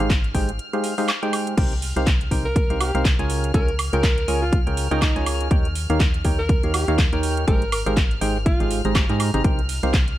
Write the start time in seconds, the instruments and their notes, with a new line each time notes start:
Already playing: violin section F6
0.00 fm bass G#1, synth stab G#3 D#4 G4 G#4 C5 F5
0.10 kick, clap, closed hi-hat
0.24 closed hi-hat
0.35 fm bass G#1, synth stab G#3 D#4 G4 G#4 C5 G5, kick, open hi-hat
0.49 closed hi-hat
0.59 closed hi-hat
0.73 synth stab G#3 D#4 G4 G#4 C5 F5, closed hi-hat
0.84 open hi-hat
0.98 synth stab G#3 D#4 G4 G#4 C5 F5, open hi-hat
1.08 clap, closed hi-hat, high woodblock
1.23 synth stab G#3 D#4 G4 G#4 C5 G5, closed hi-hat
1.33 open hi-hat, high woodblock
1.47 closed hi-hat
1.57 fm bass C2, synth stab C3 D#4 G4 A#4 C5 G5, violin section F6, kick, closed hi-hat, crash
1.72 closed hi-hat
1.82 open hi-hat
1.96 fm bass C2, synth stab C3 D#4 G4 A#4 C5 F5, closed hi-hat
2.07 kick, clap, closed hi-hat
2.21 closed hi-hat
2.31 fm bass C2, synth stab C3 D#4 G4 A#4 C5 G5, kick, open hi-hat
2.46 alto saxophone A#4
2.56 kick, closed hi-hat
2.70 fm bass C2, synth stab C3 D#4 G4 A#4 C5 F5, closed hi-hat
2.81 alto saxophone G4, open hi-hat, high woodblock
2.95 fm bass C2, synth stab C3 D#4 G4 A#4 C5 F5, closed hi-hat
3.05 kick, clap, closed hi-hat
3.19 fm bass C#2, synth stab C#3 F4 G#4 A#4 C#5 G#5, closed hi-hat
3.30 open hi-hat
3.44 closed hi-hat
3.54 fm bass C#2, synth stab C#3 F4 G#4 A#4 C#5 G#5, alto saxophone A#4, kick, closed hi-hat
3.68 closed hi-hat
3.79 open hi-hat, high woodblock
3.93 fm bass C#2, synth stab C#3 F4 G#4 A#4 C#5 G5, alto saxophone A#4, closed hi-hat
4.03 kick, clap, closed hi-hat
4.18 closed hi-hat
4.28 fm bass C#2, synth stab C#3 F4 G#4 A#4 C#5 G#5, open hi-hat
4.42 alto saxophone F4
4.53 kick, closed hi-hat
4.67 fm bass C#2, synth stab C#3 F4 G#4 A#4 C#5 G5, closed hi-hat
4.77 open hi-hat
4.91 fm bass C#2, synth stab C#3 F4 G#4 A#4 C#5 G5, alto saxophone D#4, closed hi-hat
5.02 kick, clap, closed hi-hat, high woodblock
5.16 fm bass C#2, synth stab C#3 F4 G#4 A#4 C#5 G#5, closed hi-hat
5.26 open hi-hat, high woodblock
5.41 closed hi-hat
5.51 fm bass D#2, synth stab D#3 D#4 G4 A#4 C#5 G5, kick, closed hi-hat
5.65 closed hi-hat
5.75 open hi-hat
5.90 fm bass D#2, synth stab D#3 D#4 G4 A#4 C#5 F5, closed hi-hat
6.00 kick, clap, closed hi-hat
6.14 closed hi-hat
6.25 fm bass D#2, synth stab D#3 D#4 G4 A#4 C#5 G5, kick, open hi-hat
6.39 alto saxophone A#4
6.49 kick, closed hi-hat
6.63 fm bass D#2, synth stab D#3 D#4 G4 A#4 C#5 F5, closed hi-hat
6.74 alto saxophone G4, open hi-hat, high woodblock
6.88 fm bass D#2, synth stab D#3 D#4 G4 A#4 C#5 F5, closed hi-hat
6.98 kick, clap, closed hi-hat
7.13 fm bass D#2, synth stab D#3 D#4 G4 A#4 C#5 G5, closed hi-hat
7.23 open hi-hat
7.37 closed hi-hat
7.48 fm bass G#1, synth stab G#3 D#4 G4 G#4 C5 G5, alto saxophone A#4, kick, closed hi-hat
7.62 closed hi-hat
7.72 alto saxophone A#4, open hi-hat, high woodblock
7.86 fm bass G#1, synth stab G#3 D#4 G4 G#4 C5 F5, alto saxophone A#4, closed hi-hat
7.97 kick, clap, closed hi-hat
8.11 closed hi-hat
8.21 fm bass G#1, synth stab G#3 D#4 G4 G#4 C5 G5, open hi-hat
8.46 alto saxophone F4, kick, closed hi-hat
8.60 fm bass G#1, synth stab G#3 D#4 G4 G#4 C5 F5, closed hi-hat
8.71 open hi-hat
8.85 fm bass G#1, synth stab G#3 D#4 G4 G#4 C5 A#5, closed hi-hat
8.95 kick, clap, closed hi-hat, high woodblock
9.09 fm bass G#2, synth stab G#3 D#4 G4 G#4 C5 A#5, closed hi-hat
9.20 open hi-hat, high woodblock
9.34 fm bass G#1, synth stab C3 D#4 G4 G#4 C5 A#5, closed hi-hat
9.44 fm bass C2, synth stab C3 D#4 G4 A#4 C5 G5, kick, closed hi-hat
9.59 closed hi-hat
9.69 open hi-hat, ride
9.83 fm bass C2, synth stab C3 D#4 G4 A#4 C5 F5, closed hi-hat
9.94 kick, clap, closed hi-hat
10.08 closed hi-hat